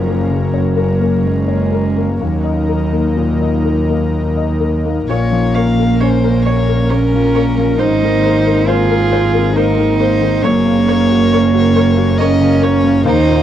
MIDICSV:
0, 0, Header, 1, 7, 480
1, 0, Start_track
1, 0, Tempo, 934579
1, 636, Tempo, 963082
1, 1118, Time_signature, 3, 2, 24, 8
1, 2556, Tempo, 914634
1, 3036, Tempo, 883652
1, 7067, End_track
2, 0, Start_track
2, 0, Title_t, "Viola"
2, 0, Program_c, 0, 41
2, 2560, Note_on_c, 0, 73, 47
2, 2602, Note_off_c, 0, 73, 0
2, 2799, Note_on_c, 0, 73, 49
2, 2841, Note_off_c, 0, 73, 0
2, 3037, Note_on_c, 0, 73, 50
2, 3080, Note_off_c, 0, 73, 0
2, 3281, Note_on_c, 0, 73, 45
2, 3324, Note_off_c, 0, 73, 0
2, 3522, Note_on_c, 0, 73, 51
2, 3565, Note_off_c, 0, 73, 0
2, 3765, Note_on_c, 0, 73, 47
2, 3808, Note_off_c, 0, 73, 0
2, 4003, Note_on_c, 0, 72, 57
2, 4047, Note_off_c, 0, 72, 0
2, 4244, Note_on_c, 0, 72, 52
2, 4287, Note_off_c, 0, 72, 0
2, 4486, Note_on_c, 0, 72, 56
2, 4529, Note_off_c, 0, 72, 0
2, 4726, Note_on_c, 0, 72, 51
2, 4769, Note_off_c, 0, 72, 0
2, 4966, Note_on_c, 0, 72, 60
2, 5010, Note_off_c, 0, 72, 0
2, 5208, Note_on_c, 0, 72, 51
2, 5251, Note_off_c, 0, 72, 0
2, 5446, Note_on_c, 0, 73, 63
2, 5490, Note_off_c, 0, 73, 0
2, 5686, Note_on_c, 0, 73, 61
2, 5729, Note_off_c, 0, 73, 0
2, 5926, Note_on_c, 0, 73, 62
2, 5969, Note_off_c, 0, 73, 0
2, 6164, Note_on_c, 0, 73, 63
2, 6207, Note_off_c, 0, 73, 0
2, 6401, Note_on_c, 0, 73, 70
2, 6444, Note_off_c, 0, 73, 0
2, 6637, Note_on_c, 0, 73, 61
2, 6681, Note_off_c, 0, 73, 0
2, 6875, Note_on_c, 0, 70, 67
2, 6918, Note_off_c, 0, 70, 0
2, 7067, End_track
3, 0, Start_track
3, 0, Title_t, "Violin"
3, 0, Program_c, 1, 40
3, 2560, Note_on_c, 1, 73, 56
3, 2796, Note_on_c, 1, 77, 59
3, 2804, Note_off_c, 1, 73, 0
3, 3039, Note_on_c, 1, 72, 55
3, 3047, Note_off_c, 1, 77, 0
3, 3276, Note_off_c, 1, 72, 0
3, 3279, Note_on_c, 1, 73, 61
3, 3521, Note_on_c, 1, 70, 64
3, 3529, Note_off_c, 1, 73, 0
3, 4003, Note_on_c, 1, 72, 65
3, 4011, Note_off_c, 1, 70, 0
3, 4485, Note_on_c, 1, 68, 62
3, 4493, Note_off_c, 1, 72, 0
3, 4965, Note_on_c, 1, 70, 64
3, 4973, Note_off_c, 1, 68, 0
3, 5197, Note_off_c, 1, 70, 0
3, 5200, Note_on_c, 1, 72, 66
3, 5435, Note_on_c, 1, 73, 84
3, 5444, Note_off_c, 1, 72, 0
3, 6390, Note_on_c, 1, 75, 79
3, 6398, Note_off_c, 1, 73, 0
3, 6634, Note_on_c, 1, 73, 79
3, 6642, Note_off_c, 1, 75, 0
3, 6866, Note_off_c, 1, 73, 0
3, 6869, Note_on_c, 1, 72, 82
3, 7067, Note_off_c, 1, 72, 0
3, 7067, End_track
4, 0, Start_track
4, 0, Title_t, "Analog synth pad"
4, 0, Program_c, 2, 89
4, 0, Note_on_c, 2, 58, 50
4, 0, Note_on_c, 2, 61, 55
4, 0, Note_on_c, 2, 70, 53
4, 1097, Note_off_c, 2, 70, 0
4, 1111, Note_on_c, 2, 63, 54
4, 1111, Note_on_c, 2, 70, 52
4, 1117, Note_off_c, 2, 61, 0
4, 2533, Note_off_c, 2, 70, 0
4, 2551, Note_off_c, 2, 58, 0
4, 2553, Note_off_c, 2, 63, 0
4, 2556, Note_on_c, 2, 61, 64
4, 2557, Note_on_c, 2, 58, 56
4, 2559, Note_on_c, 2, 70, 61
4, 3983, Note_off_c, 2, 61, 0
4, 4004, Note_on_c, 2, 60, 64
4, 5424, Note_off_c, 2, 58, 0
4, 5425, Note_off_c, 2, 70, 0
4, 5445, Note_off_c, 2, 60, 0
4, 5446, Note_on_c, 2, 61, 66
4, 5447, Note_on_c, 2, 58, 68
4, 5448, Note_on_c, 2, 70, 67
4, 6873, Note_on_c, 2, 63, 71
4, 6874, Note_off_c, 2, 61, 0
4, 7067, Note_off_c, 2, 58, 0
4, 7067, Note_off_c, 2, 63, 0
4, 7067, Note_off_c, 2, 70, 0
4, 7067, End_track
5, 0, Start_track
5, 0, Title_t, "Cello"
5, 0, Program_c, 3, 42
5, 0, Note_on_c, 3, 53, 61
5, 157, Note_on_c, 3, 54, 56
5, 165, Note_off_c, 3, 53, 0
5, 638, Note_on_c, 3, 56, 66
5, 646, Note_off_c, 3, 54, 0
5, 1116, Note_off_c, 3, 56, 0
5, 1119, Note_on_c, 3, 54, 52
5, 2302, Note_off_c, 3, 54, 0
5, 2560, Note_on_c, 3, 58, 78
5, 3527, Note_on_c, 3, 61, 76
5, 3535, Note_off_c, 3, 58, 0
5, 4007, Note_off_c, 3, 61, 0
5, 4009, Note_on_c, 3, 63, 91
5, 4487, Note_on_c, 3, 65, 89
5, 4495, Note_off_c, 3, 63, 0
5, 4968, Note_off_c, 3, 65, 0
5, 4971, Note_on_c, 3, 63, 91
5, 5451, Note_on_c, 3, 58, 96
5, 5459, Note_off_c, 3, 63, 0
5, 6398, Note_on_c, 3, 61, 94
5, 6406, Note_off_c, 3, 58, 0
5, 6867, Note_off_c, 3, 61, 0
5, 6870, Note_on_c, 3, 63, 115
5, 7067, Note_off_c, 3, 63, 0
5, 7067, End_track
6, 0, Start_track
6, 0, Title_t, "Felt piano"
6, 0, Program_c, 4, 0
6, 0, Control_c, 4, 64, 127
6, 0, Note_on_c, 4, 42, 54
6, 0, Note_on_c, 4, 70, 38
6, 0, Note_on_c, 4, 73, 42
6, 39, Note_on_c, 4, 58, 37
6, 109, Note_off_c, 4, 70, 0
6, 154, Note_on_c, 4, 49, 37
6, 228, Note_off_c, 4, 58, 0
6, 276, Note_off_c, 4, 73, 0
6, 276, Note_on_c, 4, 73, 40
6, 346, Note_off_c, 4, 49, 0
6, 391, Note_on_c, 4, 70, 41
6, 467, Note_off_c, 4, 73, 0
6, 514, Note_on_c, 4, 58, 38
6, 586, Note_off_c, 4, 70, 0
6, 756, Note_on_c, 4, 73, 34
6, 876, Note_on_c, 4, 70, 32
6, 900, Note_off_c, 4, 58, 0
6, 949, Note_off_c, 4, 73, 0
6, 995, Note_on_c, 4, 58, 32
6, 1070, Note_off_c, 4, 70, 0
6, 1097, Note_off_c, 4, 42, 0
6, 1117, Note_off_c, 4, 58, 0
6, 1120, Note_on_c, 4, 39, 35
6, 1128, Control_c, 4, 64, 0
6, 1201, Control_c, 4, 64, 127
6, 1236, Note_on_c, 4, 75, 32
6, 1358, Note_on_c, 4, 70, 33
6, 1430, Note_off_c, 4, 75, 0
6, 1475, Note_on_c, 4, 58, 30
6, 1551, Note_off_c, 4, 70, 0
6, 1596, Note_on_c, 4, 46, 32
6, 1670, Note_off_c, 4, 58, 0
6, 1720, Note_on_c, 4, 75, 32
6, 1791, Note_off_c, 4, 46, 0
6, 1838, Note_on_c, 4, 70, 34
6, 1914, Note_off_c, 4, 75, 0
6, 1958, Note_on_c, 4, 58, 32
6, 2032, Note_off_c, 4, 70, 0
6, 2197, Note_on_c, 4, 75, 33
6, 2313, Note_on_c, 4, 70, 32
6, 2343, Note_off_c, 4, 58, 0
6, 2391, Note_off_c, 4, 75, 0
6, 2437, Note_on_c, 4, 58, 29
6, 2506, Note_off_c, 4, 70, 0
6, 2538, Note_off_c, 4, 39, 0
6, 2555, Note_off_c, 4, 58, 0
6, 2556, Note_on_c, 4, 46, 51
6, 2566, Control_c, 4, 64, 0
6, 2650, Control_c, 4, 64, 127
6, 2677, Note_on_c, 4, 53, 41
6, 2805, Note_on_c, 4, 58, 45
6, 2870, Note_off_c, 4, 53, 0
6, 2927, Note_on_c, 4, 70, 40
6, 2993, Note_off_c, 4, 58, 0
6, 3043, Note_on_c, 4, 61, 46
6, 3115, Note_off_c, 4, 70, 0
6, 3164, Note_on_c, 4, 70, 49
6, 3236, Note_off_c, 4, 61, 0
6, 3289, Note_on_c, 4, 73, 48
6, 3356, Note_off_c, 4, 70, 0
6, 3406, Note_on_c, 4, 70, 49
6, 3479, Note_off_c, 4, 73, 0
6, 3527, Note_on_c, 4, 58, 46
6, 3597, Note_off_c, 4, 70, 0
6, 3650, Note_on_c, 4, 53, 44
6, 3717, Note_off_c, 4, 58, 0
6, 3768, Note_on_c, 4, 58, 50
6, 3839, Note_off_c, 4, 53, 0
6, 3891, Note_on_c, 4, 53, 41
6, 3959, Note_off_c, 4, 58, 0
6, 3983, Note_off_c, 4, 46, 0
6, 4008, Note_off_c, 4, 53, 0
6, 4012, Note_on_c, 4, 44, 56
6, 4013, Control_c, 4, 64, 0
6, 4107, Control_c, 4, 64, 127
6, 4136, Note_on_c, 4, 51, 49
6, 4258, Note_on_c, 4, 58, 50
6, 4323, Note_off_c, 4, 51, 0
6, 4374, Note_on_c, 4, 70, 46
6, 4444, Note_off_c, 4, 58, 0
6, 4492, Note_on_c, 4, 72, 51
6, 4563, Note_off_c, 4, 70, 0
6, 4608, Note_on_c, 4, 70, 51
6, 4682, Note_off_c, 4, 72, 0
6, 4732, Note_on_c, 4, 72, 55
6, 4800, Note_off_c, 4, 70, 0
6, 4846, Note_on_c, 4, 70, 54
6, 4922, Note_off_c, 4, 72, 0
6, 4967, Note_on_c, 4, 58, 47
6, 5038, Note_off_c, 4, 70, 0
6, 5086, Note_on_c, 4, 51, 52
6, 5158, Note_off_c, 4, 58, 0
6, 5206, Note_on_c, 4, 58, 54
6, 5277, Note_off_c, 4, 51, 0
6, 5321, Note_on_c, 4, 51, 50
6, 5397, Note_off_c, 4, 58, 0
6, 5427, Note_off_c, 4, 44, 0
6, 5443, Note_off_c, 4, 51, 0
6, 5444, Note_on_c, 4, 42, 66
6, 5455, Control_c, 4, 64, 0
6, 5542, Control_c, 4, 64, 127
6, 5562, Note_on_c, 4, 49, 52
6, 5688, Note_on_c, 4, 58, 55
6, 5756, Note_off_c, 4, 49, 0
6, 5805, Note_on_c, 4, 66, 53
6, 5878, Note_off_c, 4, 58, 0
6, 5931, Note_on_c, 4, 70, 60
6, 5996, Note_off_c, 4, 66, 0
6, 6042, Note_on_c, 4, 66, 64
6, 6117, Note_off_c, 4, 70, 0
6, 6160, Note_on_c, 4, 70, 63
6, 6231, Note_off_c, 4, 66, 0
6, 6277, Note_on_c, 4, 66, 62
6, 6349, Note_off_c, 4, 70, 0
6, 6400, Note_on_c, 4, 58, 62
6, 6467, Note_off_c, 4, 66, 0
6, 6509, Note_on_c, 4, 49, 56
6, 6588, Note_off_c, 4, 58, 0
6, 6626, Note_on_c, 4, 58, 63
6, 6703, Note_off_c, 4, 49, 0
6, 6749, Note_on_c, 4, 49, 58
6, 6822, Note_off_c, 4, 58, 0
6, 6852, Note_off_c, 4, 42, 0
6, 6866, Note_on_c, 4, 39, 76
6, 6871, Note_off_c, 4, 49, 0
6, 6882, Control_c, 4, 64, 0
6, 6970, Control_c, 4, 64, 127
6, 6987, Note_on_c, 4, 46, 58
6, 7067, Note_off_c, 4, 39, 0
6, 7067, Note_off_c, 4, 46, 0
6, 7067, End_track
7, 0, Start_track
7, 0, Title_t, "Double bass"
7, 0, Program_c, 5, 43
7, 0, Note_on_c, 5, 30, 60
7, 1119, Note_on_c, 5, 39, 49
7, 1126, Note_off_c, 5, 30, 0
7, 2552, Note_off_c, 5, 39, 0
7, 2555, Note_on_c, 5, 34, 64
7, 4002, Note_on_c, 5, 32, 63
7, 4010, Note_off_c, 5, 34, 0
7, 5447, Note_on_c, 5, 30, 79
7, 5455, Note_off_c, 5, 32, 0
7, 6876, Note_on_c, 5, 39, 88
7, 6884, Note_off_c, 5, 30, 0
7, 7067, Note_off_c, 5, 39, 0
7, 7067, End_track
0, 0, End_of_file